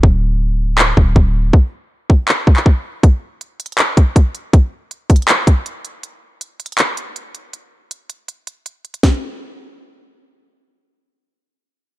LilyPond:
<<
  \new Staff \with { instrumentName = "808-style bass" } { \clef bass \time 4/4 \key c \mixolydian \tempo 4 = 160 d,,2~ d,,8 d,,8 d,,4 | r1 | r1 | r1 |
r1 | r1 | r1 | r1 | }
  \new DrumStaff \with { instrumentName = "Drums" } \drummode { \time 4/4 bd4 r4 hc8 bd8 bd4 | bd4 r8 bd8 hc8 bd16 hc16 bd4 | <hh bd>4 \tuplet 3/2 { hh16 r16 r16 hh16 hh16 hh16 } <hc hh>8 <hh bd>8 <hh bd>8 hh8 | <hh bd>4 \tuplet 3/2 { hh16 r16 r16 <hh bd>16 hh16 hh16 } <hc hh>8 <hh bd>8 hh8 hh8 |
hh4 \tuplet 3/2 { hh16 r16 r16 hh16 hh16 hh16 } <hc hh>8 hh8 hh8 hh8 | hh4 hh8 hh8 hh8 hh8 hh8 hh16 hh16 | <bd sn>4 r4 r4 r4 | r4 r4 r4 r4 | }
>>